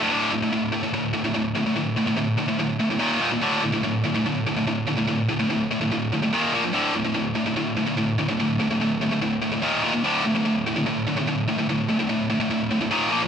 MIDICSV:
0, 0, Header, 1, 2, 480
1, 0, Start_track
1, 0, Tempo, 412939
1, 131, Time_signature, 4, 2, 24, 8
1, 15436, End_track
2, 0, Start_track
2, 0, Title_t, "Distorted electric guitar"
2, 0, Program_c, 0, 30
2, 12, Note_on_c, 0, 38, 85
2, 17, Note_on_c, 0, 45, 92
2, 111, Note_off_c, 0, 38, 0
2, 123, Note_off_c, 0, 45, 0
2, 125, Note_on_c, 0, 38, 88
2, 136, Note_on_c, 0, 45, 104
2, 143, Note_on_c, 0, 50, 104
2, 353, Note_off_c, 0, 38, 0
2, 359, Note_off_c, 0, 45, 0
2, 362, Note_off_c, 0, 50, 0
2, 371, Note_on_c, 0, 45, 79
2, 379, Note_on_c, 0, 38, 64
2, 478, Note_off_c, 0, 45, 0
2, 483, Note_off_c, 0, 38, 0
2, 492, Note_on_c, 0, 45, 78
2, 497, Note_on_c, 0, 38, 65
2, 592, Note_off_c, 0, 38, 0
2, 597, Note_off_c, 0, 45, 0
2, 606, Note_on_c, 0, 38, 71
2, 611, Note_on_c, 0, 45, 84
2, 824, Note_off_c, 0, 38, 0
2, 824, Note_off_c, 0, 45, 0
2, 838, Note_on_c, 0, 45, 89
2, 844, Note_on_c, 0, 38, 66
2, 950, Note_off_c, 0, 45, 0
2, 955, Note_off_c, 0, 38, 0
2, 964, Note_on_c, 0, 45, 78
2, 969, Note_on_c, 0, 38, 57
2, 1073, Note_off_c, 0, 38, 0
2, 1073, Note_off_c, 0, 45, 0
2, 1087, Note_on_c, 0, 38, 89
2, 1087, Note_on_c, 0, 45, 82
2, 1301, Note_off_c, 0, 45, 0
2, 1304, Note_off_c, 0, 38, 0
2, 1315, Note_on_c, 0, 45, 79
2, 1322, Note_on_c, 0, 38, 59
2, 1428, Note_off_c, 0, 45, 0
2, 1430, Note_off_c, 0, 38, 0
2, 1442, Note_on_c, 0, 45, 83
2, 1444, Note_on_c, 0, 38, 61
2, 1545, Note_off_c, 0, 38, 0
2, 1552, Note_off_c, 0, 45, 0
2, 1559, Note_on_c, 0, 38, 77
2, 1566, Note_on_c, 0, 45, 80
2, 1781, Note_off_c, 0, 38, 0
2, 1784, Note_off_c, 0, 45, 0
2, 1801, Note_on_c, 0, 45, 77
2, 1804, Note_on_c, 0, 38, 59
2, 1913, Note_off_c, 0, 38, 0
2, 1913, Note_off_c, 0, 45, 0
2, 1927, Note_on_c, 0, 38, 64
2, 1927, Note_on_c, 0, 45, 80
2, 2027, Note_off_c, 0, 38, 0
2, 2031, Note_off_c, 0, 45, 0
2, 2041, Note_on_c, 0, 38, 88
2, 2045, Note_on_c, 0, 45, 83
2, 2262, Note_off_c, 0, 38, 0
2, 2264, Note_off_c, 0, 45, 0
2, 2282, Note_on_c, 0, 45, 82
2, 2288, Note_on_c, 0, 38, 67
2, 2382, Note_off_c, 0, 45, 0
2, 2387, Note_off_c, 0, 38, 0
2, 2396, Note_on_c, 0, 45, 87
2, 2401, Note_on_c, 0, 38, 66
2, 2502, Note_off_c, 0, 38, 0
2, 2509, Note_off_c, 0, 45, 0
2, 2516, Note_on_c, 0, 38, 72
2, 2523, Note_on_c, 0, 45, 84
2, 2740, Note_off_c, 0, 38, 0
2, 2744, Note_off_c, 0, 45, 0
2, 2759, Note_on_c, 0, 45, 84
2, 2763, Note_on_c, 0, 38, 63
2, 2867, Note_off_c, 0, 45, 0
2, 2872, Note_off_c, 0, 38, 0
2, 2881, Note_on_c, 0, 45, 78
2, 2886, Note_on_c, 0, 38, 62
2, 2996, Note_off_c, 0, 38, 0
2, 3003, Note_off_c, 0, 45, 0
2, 3010, Note_on_c, 0, 38, 76
2, 3017, Note_on_c, 0, 45, 90
2, 3229, Note_off_c, 0, 38, 0
2, 3232, Note_off_c, 0, 45, 0
2, 3247, Note_on_c, 0, 45, 81
2, 3252, Note_on_c, 0, 38, 70
2, 3356, Note_off_c, 0, 45, 0
2, 3359, Note_off_c, 0, 38, 0
2, 3370, Note_on_c, 0, 45, 75
2, 3373, Note_on_c, 0, 38, 60
2, 3473, Note_off_c, 0, 38, 0
2, 3478, Note_on_c, 0, 39, 88
2, 3484, Note_off_c, 0, 45, 0
2, 3489, Note_on_c, 0, 46, 98
2, 3493, Note_on_c, 0, 51, 99
2, 3713, Note_off_c, 0, 39, 0
2, 3718, Note_off_c, 0, 46, 0
2, 3720, Note_off_c, 0, 51, 0
2, 3725, Note_on_c, 0, 39, 93
2, 3732, Note_on_c, 0, 46, 90
2, 3738, Note_on_c, 0, 51, 101
2, 3836, Note_off_c, 0, 39, 0
2, 3840, Note_off_c, 0, 46, 0
2, 3843, Note_off_c, 0, 51, 0
2, 3858, Note_on_c, 0, 46, 86
2, 3864, Note_on_c, 0, 39, 61
2, 3970, Note_off_c, 0, 39, 0
2, 3974, Note_on_c, 0, 38, 101
2, 3978, Note_off_c, 0, 46, 0
2, 3984, Note_on_c, 0, 45, 101
2, 3988, Note_on_c, 0, 50, 110
2, 4202, Note_off_c, 0, 38, 0
2, 4204, Note_off_c, 0, 45, 0
2, 4209, Note_off_c, 0, 50, 0
2, 4218, Note_on_c, 0, 45, 83
2, 4221, Note_on_c, 0, 38, 78
2, 4326, Note_off_c, 0, 45, 0
2, 4329, Note_off_c, 0, 38, 0
2, 4340, Note_on_c, 0, 45, 82
2, 4343, Note_on_c, 0, 38, 75
2, 4451, Note_off_c, 0, 38, 0
2, 4455, Note_off_c, 0, 45, 0
2, 4465, Note_on_c, 0, 38, 74
2, 4469, Note_on_c, 0, 45, 92
2, 4679, Note_off_c, 0, 38, 0
2, 4681, Note_off_c, 0, 45, 0
2, 4707, Note_on_c, 0, 45, 83
2, 4715, Note_on_c, 0, 38, 63
2, 4815, Note_off_c, 0, 45, 0
2, 4825, Note_off_c, 0, 38, 0
2, 4829, Note_on_c, 0, 45, 82
2, 4838, Note_on_c, 0, 38, 62
2, 4943, Note_off_c, 0, 38, 0
2, 4946, Note_off_c, 0, 45, 0
2, 4957, Note_on_c, 0, 38, 75
2, 4959, Note_on_c, 0, 45, 92
2, 5166, Note_off_c, 0, 38, 0
2, 5167, Note_off_c, 0, 45, 0
2, 5193, Note_on_c, 0, 45, 79
2, 5197, Note_on_c, 0, 38, 64
2, 5294, Note_off_c, 0, 45, 0
2, 5298, Note_off_c, 0, 38, 0
2, 5308, Note_on_c, 0, 45, 80
2, 5312, Note_on_c, 0, 38, 73
2, 5417, Note_off_c, 0, 38, 0
2, 5421, Note_off_c, 0, 45, 0
2, 5431, Note_on_c, 0, 38, 77
2, 5434, Note_on_c, 0, 45, 80
2, 5644, Note_off_c, 0, 38, 0
2, 5646, Note_off_c, 0, 45, 0
2, 5667, Note_on_c, 0, 45, 77
2, 5674, Note_on_c, 0, 38, 69
2, 5770, Note_off_c, 0, 45, 0
2, 5774, Note_off_c, 0, 38, 0
2, 5784, Note_on_c, 0, 45, 77
2, 5788, Note_on_c, 0, 38, 72
2, 5892, Note_off_c, 0, 38, 0
2, 5895, Note_off_c, 0, 45, 0
2, 5906, Note_on_c, 0, 38, 87
2, 5909, Note_on_c, 0, 45, 95
2, 6123, Note_off_c, 0, 38, 0
2, 6124, Note_off_c, 0, 45, 0
2, 6149, Note_on_c, 0, 45, 78
2, 6152, Note_on_c, 0, 38, 64
2, 6255, Note_off_c, 0, 45, 0
2, 6260, Note_off_c, 0, 38, 0
2, 6269, Note_on_c, 0, 45, 84
2, 6274, Note_on_c, 0, 38, 68
2, 6374, Note_off_c, 0, 38, 0
2, 6377, Note_off_c, 0, 45, 0
2, 6388, Note_on_c, 0, 38, 76
2, 6391, Note_on_c, 0, 45, 80
2, 6604, Note_off_c, 0, 38, 0
2, 6606, Note_off_c, 0, 45, 0
2, 6636, Note_on_c, 0, 45, 87
2, 6640, Note_on_c, 0, 38, 64
2, 6739, Note_off_c, 0, 45, 0
2, 6741, Note_off_c, 0, 38, 0
2, 6753, Note_on_c, 0, 45, 77
2, 6755, Note_on_c, 0, 38, 68
2, 6864, Note_off_c, 0, 38, 0
2, 6867, Note_off_c, 0, 45, 0
2, 6878, Note_on_c, 0, 38, 81
2, 6881, Note_on_c, 0, 45, 92
2, 7090, Note_off_c, 0, 38, 0
2, 7091, Note_off_c, 0, 45, 0
2, 7123, Note_on_c, 0, 45, 74
2, 7125, Note_on_c, 0, 38, 70
2, 7228, Note_off_c, 0, 45, 0
2, 7232, Note_off_c, 0, 38, 0
2, 7242, Note_on_c, 0, 45, 74
2, 7246, Note_on_c, 0, 38, 65
2, 7352, Note_off_c, 0, 38, 0
2, 7356, Note_off_c, 0, 45, 0
2, 7357, Note_on_c, 0, 39, 80
2, 7362, Note_on_c, 0, 46, 90
2, 7373, Note_on_c, 0, 51, 92
2, 7580, Note_off_c, 0, 39, 0
2, 7582, Note_off_c, 0, 46, 0
2, 7588, Note_off_c, 0, 51, 0
2, 7597, Note_on_c, 0, 46, 87
2, 7610, Note_on_c, 0, 53, 95
2, 7613, Note_on_c, 0, 58, 87
2, 7700, Note_off_c, 0, 46, 0
2, 7703, Note_off_c, 0, 53, 0
2, 7708, Note_off_c, 0, 58, 0
2, 7717, Note_on_c, 0, 53, 83
2, 7724, Note_on_c, 0, 46, 69
2, 7822, Note_off_c, 0, 46, 0
2, 7827, Note_on_c, 0, 38, 102
2, 7829, Note_off_c, 0, 53, 0
2, 7833, Note_on_c, 0, 45, 104
2, 7839, Note_on_c, 0, 50, 97
2, 8055, Note_off_c, 0, 38, 0
2, 8058, Note_off_c, 0, 45, 0
2, 8061, Note_off_c, 0, 50, 0
2, 8076, Note_on_c, 0, 45, 80
2, 8079, Note_on_c, 0, 38, 66
2, 8178, Note_off_c, 0, 45, 0
2, 8181, Note_off_c, 0, 38, 0
2, 8192, Note_on_c, 0, 45, 84
2, 8195, Note_on_c, 0, 38, 71
2, 8291, Note_off_c, 0, 38, 0
2, 8298, Note_off_c, 0, 45, 0
2, 8305, Note_on_c, 0, 38, 78
2, 8312, Note_on_c, 0, 45, 75
2, 8524, Note_off_c, 0, 38, 0
2, 8528, Note_off_c, 0, 45, 0
2, 8548, Note_on_c, 0, 45, 80
2, 8549, Note_on_c, 0, 38, 61
2, 8658, Note_off_c, 0, 45, 0
2, 8663, Note_off_c, 0, 38, 0
2, 8672, Note_on_c, 0, 45, 77
2, 8677, Note_on_c, 0, 38, 65
2, 8779, Note_off_c, 0, 38, 0
2, 8781, Note_off_c, 0, 45, 0
2, 8793, Note_on_c, 0, 38, 87
2, 8795, Note_on_c, 0, 45, 81
2, 9009, Note_off_c, 0, 38, 0
2, 9010, Note_off_c, 0, 45, 0
2, 9032, Note_on_c, 0, 38, 66
2, 9033, Note_on_c, 0, 45, 78
2, 9136, Note_off_c, 0, 45, 0
2, 9141, Note_off_c, 0, 38, 0
2, 9150, Note_on_c, 0, 45, 80
2, 9155, Note_on_c, 0, 38, 67
2, 9260, Note_off_c, 0, 38, 0
2, 9261, Note_off_c, 0, 45, 0
2, 9274, Note_on_c, 0, 38, 79
2, 9275, Note_on_c, 0, 45, 83
2, 9489, Note_off_c, 0, 38, 0
2, 9490, Note_off_c, 0, 45, 0
2, 9517, Note_on_c, 0, 45, 78
2, 9520, Note_on_c, 0, 38, 66
2, 9620, Note_off_c, 0, 45, 0
2, 9627, Note_off_c, 0, 38, 0
2, 9634, Note_on_c, 0, 45, 77
2, 9641, Note_on_c, 0, 38, 67
2, 9746, Note_off_c, 0, 38, 0
2, 9750, Note_off_c, 0, 45, 0
2, 9760, Note_on_c, 0, 38, 91
2, 9764, Note_on_c, 0, 45, 88
2, 9972, Note_off_c, 0, 38, 0
2, 9974, Note_off_c, 0, 45, 0
2, 9989, Note_on_c, 0, 45, 82
2, 9993, Note_on_c, 0, 38, 72
2, 10102, Note_off_c, 0, 45, 0
2, 10103, Note_off_c, 0, 38, 0
2, 10116, Note_on_c, 0, 45, 87
2, 10117, Note_on_c, 0, 38, 62
2, 10225, Note_off_c, 0, 38, 0
2, 10229, Note_off_c, 0, 45, 0
2, 10239, Note_on_c, 0, 38, 80
2, 10243, Note_on_c, 0, 45, 84
2, 10451, Note_off_c, 0, 38, 0
2, 10453, Note_off_c, 0, 45, 0
2, 10474, Note_on_c, 0, 45, 83
2, 10478, Note_on_c, 0, 38, 65
2, 10574, Note_off_c, 0, 45, 0
2, 10578, Note_off_c, 0, 38, 0
2, 10588, Note_on_c, 0, 45, 75
2, 10592, Note_on_c, 0, 38, 62
2, 10695, Note_off_c, 0, 38, 0
2, 10697, Note_off_c, 0, 45, 0
2, 10709, Note_on_c, 0, 38, 80
2, 10711, Note_on_c, 0, 45, 86
2, 10926, Note_off_c, 0, 38, 0
2, 10927, Note_off_c, 0, 45, 0
2, 10946, Note_on_c, 0, 45, 82
2, 10951, Note_on_c, 0, 38, 73
2, 11046, Note_off_c, 0, 45, 0
2, 11051, Note_off_c, 0, 38, 0
2, 11060, Note_on_c, 0, 45, 81
2, 11065, Note_on_c, 0, 38, 70
2, 11176, Note_off_c, 0, 38, 0
2, 11181, Note_on_c, 0, 39, 96
2, 11184, Note_off_c, 0, 45, 0
2, 11189, Note_on_c, 0, 46, 101
2, 11193, Note_on_c, 0, 51, 95
2, 11404, Note_off_c, 0, 39, 0
2, 11415, Note_off_c, 0, 46, 0
2, 11417, Note_off_c, 0, 51, 0
2, 11418, Note_on_c, 0, 39, 96
2, 11428, Note_on_c, 0, 46, 86
2, 11432, Note_on_c, 0, 51, 101
2, 11529, Note_off_c, 0, 39, 0
2, 11529, Note_off_c, 0, 46, 0
2, 11536, Note_off_c, 0, 51, 0
2, 11543, Note_on_c, 0, 46, 76
2, 11549, Note_on_c, 0, 39, 74
2, 11663, Note_off_c, 0, 39, 0
2, 11666, Note_off_c, 0, 46, 0
2, 11668, Note_on_c, 0, 38, 90
2, 11672, Note_on_c, 0, 45, 91
2, 11679, Note_on_c, 0, 50, 115
2, 11894, Note_off_c, 0, 38, 0
2, 11895, Note_off_c, 0, 45, 0
2, 11899, Note_off_c, 0, 50, 0
2, 11907, Note_on_c, 0, 45, 89
2, 11913, Note_on_c, 0, 38, 66
2, 12016, Note_off_c, 0, 45, 0
2, 12019, Note_off_c, 0, 38, 0
2, 12030, Note_on_c, 0, 45, 85
2, 12033, Note_on_c, 0, 38, 78
2, 12131, Note_off_c, 0, 38, 0
2, 12137, Note_off_c, 0, 45, 0
2, 12145, Note_on_c, 0, 38, 78
2, 12151, Note_on_c, 0, 45, 95
2, 12361, Note_off_c, 0, 38, 0
2, 12364, Note_off_c, 0, 45, 0
2, 12394, Note_on_c, 0, 45, 84
2, 12398, Note_on_c, 0, 38, 74
2, 12493, Note_off_c, 0, 45, 0
2, 12496, Note_off_c, 0, 38, 0
2, 12507, Note_on_c, 0, 45, 75
2, 12510, Note_on_c, 0, 38, 60
2, 12613, Note_off_c, 0, 38, 0
2, 12617, Note_off_c, 0, 45, 0
2, 12627, Note_on_c, 0, 38, 87
2, 12631, Note_on_c, 0, 45, 96
2, 12842, Note_off_c, 0, 38, 0
2, 12844, Note_off_c, 0, 45, 0
2, 12873, Note_on_c, 0, 45, 96
2, 12875, Note_on_c, 0, 38, 72
2, 12974, Note_off_c, 0, 45, 0
2, 12982, Note_off_c, 0, 38, 0
2, 12988, Note_on_c, 0, 45, 88
2, 12996, Note_on_c, 0, 38, 60
2, 13096, Note_off_c, 0, 38, 0
2, 13102, Note_off_c, 0, 45, 0
2, 13110, Note_on_c, 0, 38, 72
2, 13116, Note_on_c, 0, 45, 91
2, 13322, Note_off_c, 0, 38, 0
2, 13325, Note_off_c, 0, 45, 0
2, 13351, Note_on_c, 0, 45, 86
2, 13357, Note_on_c, 0, 38, 67
2, 13455, Note_off_c, 0, 45, 0
2, 13460, Note_off_c, 0, 38, 0
2, 13469, Note_on_c, 0, 45, 85
2, 13474, Note_on_c, 0, 38, 74
2, 13580, Note_off_c, 0, 38, 0
2, 13582, Note_off_c, 0, 45, 0
2, 13594, Note_on_c, 0, 38, 87
2, 13596, Note_on_c, 0, 45, 93
2, 13803, Note_off_c, 0, 38, 0
2, 13804, Note_off_c, 0, 45, 0
2, 13822, Note_on_c, 0, 45, 87
2, 13827, Note_on_c, 0, 38, 75
2, 13928, Note_off_c, 0, 45, 0
2, 13932, Note_off_c, 0, 38, 0
2, 13942, Note_on_c, 0, 45, 82
2, 13946, Note_on_c, 0, 38, 70
2, 14042, Note_off_c, 0, 38, 0
2, 14048, Note_off_c, 0, 45, 0
2, 14056, Note_on_c, 0, 38, 72
2, 14062, Note_on_c, 0, 45, 88
2, 14273, Note_off_c, 0, 38, 0
2, 14276, Note_off_c, 0, 45, 0
2, 14296, Note_on_c, 0, 45, 88
2, 14302, Note_on_c, 0, 38, 76
2, 14401, Note_off_c, 0, 45, 0
2, 14406, Note_off_c, 0, 38, 0
2, 14415, Note_on_c, 0, 45, 85
2, 14420, Note_on_c, 0, 38, 67
2, 14519, Note_off_c, 0, 38, 0
2, 14523, Note_off_c, 0, 45, 0
2, 14533, Note_on_c, 0, 38, 86
2, 14537, Note_on_c, 0, 45, 95
2, 14750, Note_off_c, 0, 38, 0
2, 14752, Note_off_c, 0, 45, 0
2, 14768, Note_on_c, 0, 45, 82
2, 14774, Note_on_c, 0, 38, 67
2, 14870, Note_off_c, 0, 45, 0
2, 14872, Note_off_c, 0, 38, 0
2, 14884, Note_on_c, 0, 45, 78
2, 14886, Note_on_c, 0, 38, 69
2, 14996, Note_off_c, 0, 38, 0
2, 15000, Note_on_c, 0, 39, 99
2, 15004, Note_off_c, 0, 45, 0
2, 15009, Note_on_c, 0, 46, 96
2, 15015, Note_on_c, 0, 51, 112
2, 15223, Note_off_c, 0, 46, 0
2, 15232, Note_off_c, 0, 39, 0
2, 15237, Note_on_c, 0, 46, 89
2, 15239, Note_off_c, 0, 51, 0
2, 15246, Note_on_c, 0, 53, 90
2, 15252, Note_on_c, 0, 58, 113
2, 15350, Note_off_c, 0, 46, 0
2, 15355, Note_off_c, 0, 53, 0
2, 15358, Note_off_c, 0, 58, 0
2, 15371, Note_on_c, 0, 53, 91
2, 15373, Note_on_c, 0, 46, 73
2, 15436, Note_off_c, 0, 46, 0
2, 15436, Note_off_c, 0, 53, 0
2, 15436, End_track
0, 0, End_of_file